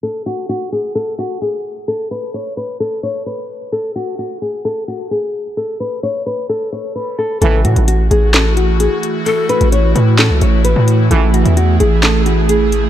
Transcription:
<<
  \new Staff \with { instrumentName = "Nylon-string guitar" } { \time 4/4 \key a \lydian \tempo 4 = 130 a'8 fis'8 fis'8 gis'8 a'8 fis'8 gis'4 | a'8 b'8 cis''8 b'8 a'8 cis''8 b'4 | a'8 fis'8 fis'8 gis'8 a'8 fis'8 gis'4 | a'8 b'8 cis''8 b'8 a'8 cis''8 b'8 a'8 |
a'8 fis'8 fis'8 gis'8 a'8 fis'8 gis'4 | a'8 b'8 cis''8 b'8 a'8 cis''8 b'4 | a'8 fis'8 fis'8 gis'8 a'8 fis'8 gis'4 | }
  \new Staff \with { instrumentName = "Pan flute" } { \time 4/4 \key a \lydian r1 | r1 | r1 | r1 |
r1 | a'4 r2. | r1 | }
  \new Staff \with { instrumentName = "Analog synth pad" } { \time 4/4 \key a \lydian << { r1 | r1 | r1 | r1 |
fis'1~ | fis'1 | gis'1 | } \\ { r1 | r1 | r1 | r1 |
<e a e'>1~ | <e a e'>1~ | <e a e'>1 | } >> }
  \new Staff \with { instrumentName = "Brass ensemble" } { \clef bass \time 4/4 \key a \lydian r1 | r1 | r1 | r1 |
<cis, a, e>4 r2. | r1 | <cis, a, e>4 r2. | }
  \new Staff \with { instrumentName = "808-style bass" } { \clef bass \time 4/4 \key a \lydian r1 | r1 | r1 | r1 |
a,,8 a,16 a,,8. a,,4.~ a,,16 r8. | r8. a,,8. a,8. cis,16 a,,8. a,8. | a,,8. e,8. a,,2~ a,,8 | }
  \new DrumStaff \with { instrumentName = "Drums" } \drummode { \time 4/4 r4 r4 r4 r4 | r4 r4 r4 r4 | r4 r4 r4 r4 | r4 r4 r4 r4 |
hh8 <hh hho>16 hh16 hh8 hh8 <hc hh sn>8 hh8 hh8 hh8 | hh8 <hh hho>16 hh16 hh8 hh8 <hc hh sn>8 hh8 hh8 hh8 | hh8 <hh hho>16 hh16 hh8 hh8 <hc hh sn>8 hh8 hh8 hh8 | }
>>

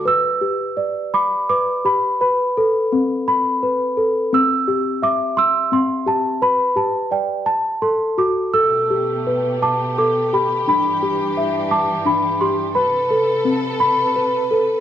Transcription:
<<
  \new Staff \with { instrumentName = "Celesta" } { \time 6/8 \key g \major \tempo 4. = 57 << { e'''4. d'''8 d'''8 b''8 | b''2~ b''8 r8 | e'''4 d'''8 e'''8 c'''8 a''8 | b''8 a''8 g''8 r8 c'''8 d'''8 |
e'''4. d'''8 d'''8 b''8 | b''4. a''8 b''8 c'''8 | b''2. | } \\ { b'8 g'8 d''8 b''8 b'8 g'8 | b'8 a'8 c'8 b''8 b'8 a'8 | c'8 g'8 e''8 c'''8 c'8 g'8 | b'8 g'8 d''8 a''8 a'8 fis'8 |
a'8 g'8 b'8 a''8 a'8 g'8 | d'8 g'8 e''8 d'''8 d'8 g'8 | b'8 a'8 c'8 b''8 b'8 a'8 | } >> }
  \new Staff \with { instrumentName = "String section" } { \time 6/8 \key g \major << { r2. | r2. | r2. | r2. |
g'2.~ | g'2. | a'2. | } \\ { r2. | r2. | r2. | r2. |
<b, a>2. | <g, e d'>2. | <c b'>2. | } >> }
>>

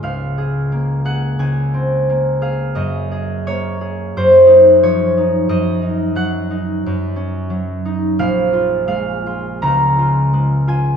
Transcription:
<<
  \new Staff \with { instrumentName = "Harp" } { \time 4/4 \key bes \minor \tempo 4 = 88 <bes' des'' f''>4. ges''8 aes''4. f''8 | ees''4 des''4 c''4 des''4 | ees''4 ges''2. | f''4 f''4 bes''4. aes''8 | }
  \new Staff \with { instrumentName = "Harp" } { \time 4/4 \key bes \minor <des, aes bes f'>8 aes'8 bes8 aes'8 des,8 c'8 bes8 aes'8 | ges,8 aes'8 bes8 aes'8 ges,8 ees'8 f8 ees'8 | ges,8 ees'8 ges8 ees'8 ges,8 des'8 ges8 ees'8 | bes,,8 f'8 aes8 f'8 des,8 f'8 aes8 f'8 | }
>>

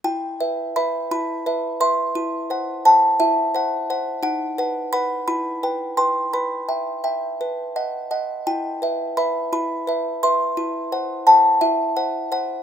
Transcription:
\new Staff \with { instrumentName = "Music box" } { \time 6/8 \key e \minor \tempo 4. = 57 << { g''4 b''8 b''4 c'''8~ | c'''4 a''8 e''4. | fis''4 b''8 b''4 c'''8 | b''2~ b''8 r8 |
g''4 b''8 b''4 c'''8~ | c'''4 a''8 e''4. | } \\ { e'8 <b' e''>8 <b' e''>8 e'8 <b' e''>8 <b' e''>8 | e'8 <c'' fis''>8 <c'' fis''>8 e'8 <c'' fis''>8 <c'' fis''>8 | dis'8 <b' fis''>8 <b' fis''>8 e'8 <b' g''>8 <b' g''>8 | b'8 <e'' g''>8 <e'' g''>8 b'8 <dis'' fis''>8 <dis'' fis''>8 |
e'8 <b' e''>8 <b' e''>8 e'8 <b' e''>8 <b' e''>8 | e'8 <c'' fis''>8 <c'' fis''>8 e'8 <c'' fis''>8 <c'' fis''>8 | } >> }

